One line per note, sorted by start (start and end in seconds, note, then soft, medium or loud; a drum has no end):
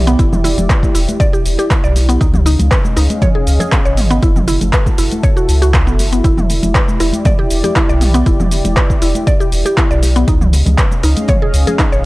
0.00 0.16 B1 medium
0.00 2.17 E4 medium
0.00 2.17 G4 medium
0.00 2.17 D5 medium
0.00 impact medium
0.07 0.18 B3 loud
0.07 closed hi-hat soft
0.07 shaker soft
0.19 0.54 E1 loud
0.19 0.31 E4 medium
0.19 kick loud
0.19 closed hi-hat medium
0.19 shaker medium
0.33 mid tom medium
0.33 low conga loud
0.33 shaker soft
0.44 0.56 E4 loud
0.44 open hi-hat medium
0.44 muted conga medium
0.44 shaker loud
0.57 0.67 E1 loud
0.57 closed hi-hat soft
0.57 high conga loud
0.57 low conga loud
0.57 shaker soft
0.70 0.82 B4 medium
0.70 kick loud
0.70 cross-stick loud
0.70 clap loud
0.70 closed hi-hat medium
0.70 shaker medium
0.83 kick medium
0.83 muted conga soft
0.83 high conga medium
0.83 shaker soft
0.95 1.06 E1 loud
0.95 1.02 E4 medium
0.95 open hi-hat medium
0.95 shaker loud
1.09 closed hi-hat soft
1.09 high conga medium
1.09 shaker soft
1.20 1.27 D5 loud
1.20 kick loud
1.20 closed hi-hat soft
1.20 muted conga medium
1.20 shaker medium
1.33 1.44 G4 medium
1.33 shaker soft
1.45 1.56 E1 loud
1.45 open hi-hat medium
1.45 shaker medium
1.58 1.70 G4 medium
1.58 closed hi-hat soft
1.58 muted conga soft
1.58 shaker soft
1.71 kick loud
1.71 cross-stick loud
1.71 clap loud
1.71 closed hi-hat medium
1.71 shaker medium
1.84 2.18 B1 loud
1.84 1.95 D5 medium
1.84 shaker soft
1.96 open hi-hat medium
1.96 muted conga soft
1.96 shaker medium
2.09 2.20 B3 loud
2.09 closed hi-hat soft
2.09 shaker soft
2.21 2.56 C#2 medium
2.21 4.21 C#4 medium
2.21 2.33 D#4 medium
2.21 4.21 G#4 medium
2.21 4.21 D#5 medium
2.21 4.21 F5 medium
2.21 kick loud
2.21 closed hi-hat medium
2.21 shaker medium
2.34 mid tom medium
2.34 low conga loud
2.34 shaker soft
2.46 2.58 D#4 loud
2.46 open hi-hat medium
2.46 muted conga medium
2.46 shaker loud
2.59 2.69 C#2 loud
2.59 closed hi-hat soft
2.59 high conga loud
2.59 low conga medium
2.59 shaker soft
2.71 2.84 B4 medium
2.71 kick loud
2.71 cross-stick loud
2.71 clap loud
2.71 closed hi-hat medium
2.71 shaker medium
2.84 muted conga soft
2.84 high conga medium
2.84 shaker soft
2.97 3.08 C#2 loud
2.97 3.04 D#4 medium
2.97 cross-stick medium
2.97 open hi-hat medium
2.97 shaker loud
3.10 closed hi-hat soft
3.10 high conga loud
3.10 shaker soft
3.22 3.29 C#5 loud
3.22 kick loud
3.22 closed hi-hat soft
3.22 mid tom medium
3.22 muted conga medium
3.22 high conga loud
3.22 low conga loud
3.22 shaker medium
3.35 3.46 G#4 medium
3.47 3.58 C#2 loud
3.47 open hi-hat medium
3.47 shaker loud
3.60 3.72 G#4 medium
3.60 closed hi-hat soft
3.60 muted conga soft
3.60 high conga medium
3.60 low conga loud
3.60 shaker soft
3.72 kick loud
3.72 cross-stick loud
3.72 clap loud
3.72 closed hi-hat medium
3.72 shaker medium
3.85 4.20 G#1 loud
3.85 3.96 C#5 medium
3.85 shaker soft
3.97 mid tom loud
3.97 open hi-hat medium
3.97 muted conga soft
3.97 shaker medium
4.11 4.21 B3 loud
4.11 closed hi-hat soft
4.11 shaker soft
4.22 4.58 F#1 loud
4.22 4.35 E4 medium
4.22 10.24 E4 medium
4.22 6.22 F#4 medium
4.22 6.22 A4 medium
4.22 kick loud
4.22 closed hi-hat medium
4.22 shaker medium
4.36 mid tom medium
4.36 low conga loud
4.36 shaker soft
4.48 4.60 E4 loud
4.48 open hi-hat medium
4.48 muted conga soft
4.48 shaker loud
4.61 4.71 F#1 loud
4.61 closed hi-hat soft
4.61 high conga loud
4.61 low conga medium
4.61 shaker soft
4.73 4.86 B4 medium
4.73 kick loud
4.73 cross-stick loud
4.73 clap loud
4.73 closed hi-hat medium
4.73 shaker medium
4.86 kick medium
4.86 muted conga soft
4.86 high conga medium
4.86 shaker soft
4.98 5.09 F#1 loud
4.98 5.06 E4 medium
4.98 open hi-hat medium
4.98 shaker loud
5.12 closed hi-hat soft
5.12 high conga medium
5.12 shaker soft
5.23 5.31 C#5 loud
5.23 kick loud
5.23 closed hi-hat medium
5.23 muted conga soft
5.23 shaker medium
5.37 5.47 F#4 medium
5.37 shaker soft
5.48 5.89 C#2 loud
5.48 open hi-hat medium
5.48 shaker medium
5.62 5.73 F#4 medium
5.62 closed hi-hat soft
5.62 muted conga soft
5.62 shaker soft
5.74 kick loud
5.74 cross-stick loud
5.74 clap loud
5.74 closed hi-hat medium
5.74 shaker medium
5.87 6.21 F#1 loud
5.87 5.98 B3 medium
5.87 shaker soft
5.99 open hi-hat medium
5.99 muted conga soft
5.99 shaker medium
6.13 6.23 B3 medium
6.13 closed hi-hat soft
6.13 shaker soft
6.24 6.59 E1 loud
6.24 6.36 E4 medium
6.24 10.24 G4 medium
6.24 10.24 D5 medium
6.24 kick loud
6.24 closed hi-hat medium
6.24 shaker medium
6.37 mid tom medium
6.37 low conga medium
6.37 shaker soft
6.50 open hi-hat medium
6.50 muted conga medium
6.50 shaker medium
6.63 6.73 E1 loud
6.63 closed hi-hat soft
6.63 high conga loud
6.63 low conga medium
6.63 shaker soft
6.75 6.88 B4 medium
6.75 kick loud
6.75 cross-stick loud
6.75 clap loud
6.75 closed hi-hat medium
6.75 shaker medium
6.88 muted conga soft
6.88 high conga medium
6.88 shaker soft
7.00 7.11 E1 loud
7.00 7.07 E4 medium
7.00 cross-stick medium
7.00 open hi-hat medium
7.00 shaker medium
7.13 closed hi-hat soft
7.13 high conga loud
7.13 shaker soft
7.25 7.33 D5 loud
7.25 kick loud
7.25 closed hi-hat medium
7.25 mid tom medium
7.25 muted conga medium
7.25 high conga loud
7.25 low conga loud
7.25 shaker medium
7.39 7.49 G4 medium
7.51 7.62 E1 medium
7.51 open hi-hat medium
7.51 shaker medium
7.63 7.75 G4 medium
7.63 closed hi-hat soft
7.63 muted conga soft
7.63 high conga medium
7.63 low conga medium
7.63 shaker soft
7.76 7.88 E4 loud
7.76 kick loud
7.76 cross-stick loud
7.76 clap loud
7.76 closed hi-hat medium
7.76 shaker medium
7.89 8.23 B1 loud
7.89 8.00 D5 medium
7.89 shaker soft
8.01 mid tom medium
8.01 open hi-hat medium
8.01 muted conga medium
8.01 shaker medium
8.14 8.25 B3 loud
8.14 closed hi-hat soft
8.14 shaker soft
8.26 8.61 E1 loud
8.26 8.38 E4 medium
8.26 kick loud
8.26 closed hi-hat medium
8.26 shaker medium
8.40 mid tom medium
8.40 low conga loud
8.40 shaker soft
8.51 open hi-hat medium
8.51 muted conga medium
8.51 shaker medium
8.64 8.75 E1 loud
8.64 closed hi-hat medium
8.64 high conga medium
8.64 low conga medium
8.64 shaker soft
8.77 8.89 B4 medium
8.77 kick loud
8.77 cross-stick loud
8.77 clap loud
8.77 closed hi-hat medium
8.77 shaker medium
8.90 kick medium
8.90 muted conga soft
8.90 high conga medium
8.90 shaker soft
9.02 9.13 E1 loud
9.02 9.09 E4 medium
9.02 open hi-hat medium
9.02 shaker medium
9.15 closed hi-hat soft
9.15 high conga medium
9.15 shaker soft
9.27 9.34 D5 loud
9.27 kick loud
9.27 closed hi-hat medium
9.27 muted conga soft
9.27 shaker soft
9.40 9.51 G4 medium
9.40 shaker soft
9.52 9.63 E1 loud
9.52 open hi-hat medium
9.52 shaker medium
9.65 9.77 G4 medium
9.65 closed hi-hat soft
9.65 muted conga soft
9.65 shaker soft
9.77 9.89 E4 loud
9.77 kick loud
9.77 cross-stick loud
9.77 clap loud
9.77 closed hi-hat medium
9.77 shaker medium
9.91 10.25 B1 medium
9.91 10.01 D5 medium
9.91 shaker soft
10.03 open hi-hat medium
10.03 muted conga soft
10.03 shaker medium
10.16 10.27 B3 loud
10.16 closed hi-hat soft
10.16 shaker soft
10.28 10.63 C#2 loud
10.28 12.05 C#4 medium
10.28 10.40 D#4 medium
10.28 12.05 G#4 medium
10.28 12.05 D#5 medium
10.28 12.05 F5 medium
10.28 kick loud
10.28 closed hi-hat medium
10.28 shaker medium
10.41 mid tom medium
10.41 low conga loud
10.41 shaker soft
10.53 open hi-hat loud
10.53 muted conga medium
10.53 shaker medium
10.66 10.76 C#2 loud
10.66 closed hi-hat soft
10.66 high conga medium
10.66 low conga medium
10.66 shaker soft
10.78 10.91 B4 medium
10.78 kick loud
10.78 cross-stick loud
10.78 clap loud
10.78 closed hi-hat medium
10.78 shaker medium
10.91 muted conga soft
10.91 high conga medium
10.91 shaker soft
11.03 11.14 C#2 loud
11.03 11.11 D#4 medium
11.03 cross-stick medium
11.03 open hi-hat loud
11.03 shaker loud
11.17 closed hi-hat soft
11.17 high conga loud
11.17 shaker soft
11.28 11.36 C#5 loud
11.28 kick loud
11.28 closed hi-hat medium
11.28 mid tom medium
11.28 muted conga soft
11.28 high conga loud
11.28 low conga loud
11.28 shaker medium
11.42 11.53 G#4 medium
11.53 11.65 C#2 loud
11.53 open hi-hat medium
11.53 shaker medium
11.67 11.78 G#4 medium
11.67 closed hi-hat soft
11.67 muted conga soft
11.67 high conga medium
11.67 low conga medium
11.67 shaker soft
11.79 11.91 D#4 loud
11.79 kick loud
11.79 cross-stick loud
11.79 clap loud
11.79 closed hi-hat medium
11.79 shaker medium
11.92 12.05 G#1 loud
11.92 12.03 C#5 medium
11.92 shaker soft